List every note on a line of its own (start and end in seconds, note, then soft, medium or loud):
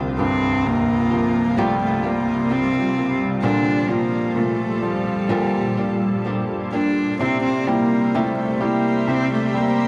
0.00 3.39 C2 soft
0.00 0.19 C3 medium
0.00 3.39 C3 medium
0.00 0.19 F3 medium
0.00 7.16 G3 medium
0.00 0.19 A#3 medium
0.00 1.55 A#3 medium
0.00 0.19 F4 medium
0.00 7.16 F4 medium
0.00 0.18 G4 medium
0.19 1.99 G2 soft
0.19 1.12 A#3 soft
0.19 0.68 C4 medium
0.19 1.12 F4 soft
0.19 1.10 G4 soft
0.65 2.46 C3 soft
0.65 1.60 A#3 medium
1.11 2.93 F3 soft
1.11 1.57 A#3 soft
1.11 1.57 F4 soft
1.11 1.57 G4 soft
1.57 2.04 C3 medium
1.57 2.04 F3 medium
1.57 3.40 G3 soft
1.57 1.81 A3 medium
1.57 2.04 A#3 medium
1.57 3.42 C4 medium
1.57 2.03 F4 medium
1.57 2.02 G4 medium
1.84 2.09 A3 medium
2.03 2.49 A#3 soft
2.03 2.49 F4 soft
2.03 2.50 G4 soft
2.07 2.54 A#3 medium
2.49 2.96 F3 soft
2.49 2.97 A#3 soft
2.49 3.21 C4 medium
2.49 2.97 F4 soft
2.49 2.95 G4 soft
2.96 3.42 A#3 soft
2.96 3.43 F4 soft
2.96 3.43 G4 soft
3.42 3.89 A#2 medium
3.42 7.16 A#2 medium
3.42 4.35 A#2 soft
3.42 3.89 D3 medium
3.42 3.89 F3 medium
3.42 3.90 A#3 medium
3.42 3.88 D4 medium
3.42 3.92 D4 medium
3.42 3.87 G4 medium
3.42 5.28 A4 medium
3.89 5.29 F3 soft
3.89 4.81 F3 soft
3.89 4.38 A#3 medium
3.89 5.29 D4 soft
3.89 5.30 G4 soft
4.36 5.27 A#2 soft
4.36 4.84 A3 medium
4.82 6.68 F3 soft
4.82 6.25 G3 medium
5.29 7.16 A#2 soft
5.29 5.77 A#2 medium
5.29 5.77 D3 soft
5.29 5.77 F3 medium
5.29 7.18 A#3 medium
5.29 5.77 A#3 medium
5.29 5.77 D4 medium
5.29 5.76 G4 medium
5.77 6.24 F3 soft
5.77 6.24 A#3 soft
5.77 6.25 D4 soft
5.77 6.25 G4 soft
6.25 6.73 F3 soft
6.25 6.72 A#3 soft
6.25 6.72 D4 soft
6.25 6.71 G4 soft
6.72 7.20 F3 soft
6.72 7.20 A#3 soft
6.72 7.20 D4 soft
6.72 7.18 D4 medium
6.72 7.20 G4 soft
7.19 7.67 C3 medium
7.19 8.13 C3 soft
7.19 7.67 G3 medium
7.19 7.68 C4 medium
7.19 7.43 C4 medium
7.19 7.67 E4 medium
7.19 9.88 G4 medium
7.19 7.66 G4 medium
7.19 9.88 C5 medium
7.19 9.88 E5 medium
7.19 9.88 C6 medium
7.44 7.70 C4 medium
7.67 8.59 G3 soft
7.67 8.18 A#3 medium
7.67 8.14 C4 soft
7.67 8.14 E4 soft
7.67 8.14 G4 soft
8.14 8.62 C3 medium
8.14 9.06 C3 soft
8.14 8.62 G3 medium
8.14 8.38 A3 medium
8.14 8.61 C4 medium
8.14 8.61 E4 medium
8.14 8.59 G4 medium
8.39 8.64 A3 medium
8.60 9.53 G3 soft
8.60 9.12 A#3 medium
8.60 9.07 C4 soft
8.60 9.08 E4 soft
8.60 9.08 G4 soft
9.08 9.88 C3 soft
9.08 9.88 G3 soft
9.08 9.88 C4 soft
9.08 9.33 C4 medium
9.08 9.88 E4 soft
9.08 9.88 G4 soft
9.34 9.59 A3 medium
9.54 9.88 G3 soft
9.54 9.88 A#3 medium